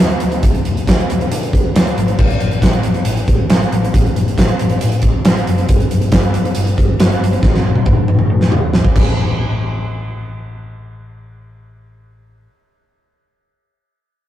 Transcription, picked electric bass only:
0, 0, Header, 1, 2, 480
1, 0, Start_track
1, 0, Tempo, 436364
1, 475, Time_signature, 4, 2, 24, 8
1, 15711, End_track
2, 0, Start_track
2, 0, Title_t, "Picked electric bass"
2, 0, Program_c, 0, 34
2, 15, Note_on_c, 0, 38, 97
2, 172, Note_off_c, 0, 38, 0
2, 259, Note_on_c, 0, 38, 93
2, 415, Note_off_c, 0, 38, 0
2, 481, Note_on_c, 0, 38, 101
2, 643, Note_off_c, 0, 38, 0
2, 728, Note_on_c, 0, 38, 83
2, 888, Note_off_c, 0, 38, 0
2, 962, Note_on_c, 0, 38, 86
2, 1124, Note_off_c, 0, 38, 0
2, 1219, Note_on_c, 0, 38, 90
2, 1376, Note_off_c, 0, 38, 0
2, 1453, Note_on_c, 0, 50, 102
2, 1776, Note_off_c, 0, 50, 0
2, 1921, Note_on_c, 0, 38, 93
2, 2084, Note_off_c, 0, 38, 0
2, 2163, Note_on_c, 0, 32, 86
2, 2326, Note_off_c, 0, 32, 0
2, 2409, Note_on_c, 0, 33, 95
2, 2571, Note_off_c, 0, 33, 0
2, 2650, Note_on_c, 0, 33, 86
2, 2811, Note_off_c, 0, 33, 0
2, 2877, Note_on_c, 0, 33, 88
2, 3206, Note_off_c, 0, 33, 0
2, 3361, Note_on_c, 0, 33, 99
2, 3526, Note_off_c, 0, 33, 0
2, 3605, Note_on_c, 0, 33, 88
2, 3769, Note_off_c, 0, 33, 0
2, 3841, Note_on_c, 0, 33, 97
2, 4006, Note_off_c, 0, 33, 0
2, 4090, Note_on_c, 0, 33, 86
2, 4252, Note_off_c, 0, 33, 0
2, 4343, Note_on_c, 0, 33, 94
2, 4501, Note_off_c, 0, 33, 0
2, 4575, Note_on_c, 0, 33, 83
2, 4735, Note_off_c, 0, 33, 0
2, 4811, Note_on_c, 0, 33, 90
2, 4973, Note_off_c, 0, 33, 0
2, 5072, Note_on_c, 0, 33, 91
2, 5227, Note_off_c, 0, 33, 0
2, 5317, Note_on_c, 0, 45, 100
2, 5634, Note_off_c, 0, 45, 0
2, 5791, Note_on_c, 0, 33, 91
2, 5947, Note_off_c, 0, 33, 0
2, 6028, Note_on_c, 0, 30, 84
2, 6185, Note_off_c, 0, 30, 0
2, 6254, Note_on_c, 0, 31, 103
2, 6416, Note_off_c, 0, 31, 0
2, 6533, Note_on_c, 0, 31, 84
2, 6681, Note_off_c, 0, 31, 0
2, 6736, Note_on_c, 0, 31, 88
2, 7060, Note_off_c, 0, 31, 0
2, 7225, Note_on_c, 0, 31, 101
2, 7382, Note_off_c, 0, 31, 0
2, 7453, Note_on_c, 0, 31, 88
2, 7615, Note_off_c, 0, 31, 0
2, 7689, Note_on_c, 0, 31, 100
2, 7852, Note_off_c, 0, 31, 0
2, 7918, Note_on_c, 0, 31, 89
2, 8085, Note_off_c, 0, 31, 0
2, 8174, Note_on_c, 0, 33, 93
2, 8335, Note_off_c, 0, 33, 0
2, 8400, Note_on_c, 0, 33, 83
2, 8566, Note_off_c, 0, 33, 0
2, 8649, Note_on_c, 0, 33, 85
2, 8812, Note_off_c, 0, 33, 0
2, 8897, Note_on_c, 0, 33, 98
2, 9057, Note_off_c, 0, 33, 0
2, 9128, Note_on_c, 0, 45, 105
2, 9454, Note_off_c, 0, 45, 0
2, 9625, Note_on_c, 0, 33, 94
2, 9782, Note_off_c, 0, 33, 0
2, 9857, Note_on_c, 0, 33, 95
2, 13713, Note_off_c, 0, 33, 0
2, 15711, End_track
0, 0, End_of_file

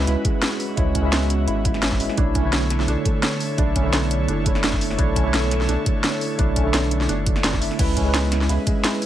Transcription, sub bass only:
0, 0, Header, 1, 2, 480
1, 0, Start_track
1, 0, Tempo, 350877
1, 1060, Time_signature, 4, 2, 24, 8
1, 12393, End_track
2, 0, Start_track
2, 0, Title_t, "Sub bass"
2, 0, Program_c, 0, 38
2, 101, Note_on_c, 0, 37, 103
2, 214, Note_off_c, 0, 37, 0
2, 1059, Note_on_c, 0, 37, 99
2, 2001, Note_off_c, 0, 37, 0
2, 2017, Note_on_c, 0, 32, 83
2, 2731, Note_off_c, 0, 32, 0
2, 2739, Note_on_c, 0, 32, 88
2, 2853, Note_off_c, 0, 32, 0
2, 2977, Note_on_c, 0, 35, 98
2, 3920, Note_off_c, 0, 35, 0
2, 3935, Note_on_c, 0, 35, 103
2, 4051, Note_off_c, 0, 35, 0
2, 4899, Note_on_c, 0, 35, 99
2, 5841, Note_off_c, 0, 35, 0
2, 5860, Note_on_c, 0, 30, 88
2, 6802, Note_off_c, 0, 30, 0
2, 6820, Note_on_c, 0, 35, 96
2, 7762, Note_off_c, 0, 35, 0
2, 7776, Note_on_c, 0, 35, 105
2, 7892, Note_off_c, 0, 35, 0
2, 8739, Note_on_c, 0, 35, 101
2, 9681, Note_off_c, 0, 35, 0
2, 9698, Note_on_c, 0, 30, 87
2, 10411, Note_off_c, 0, 30, 0
2, 10419, Note_on_c, 0, 30, 87
2, 10533, Note_off_c, 0, 30, 0
2, 10659, Note_on_c, 0, 37, 99
2, 11601, Note_off_c, 0, 37, 0
2, 11621, Note_on_c, 0, 37, 106
2, 11734, Note_off_c, 0, 37, 0
2, 12393, End_track
0, 0, End_of_file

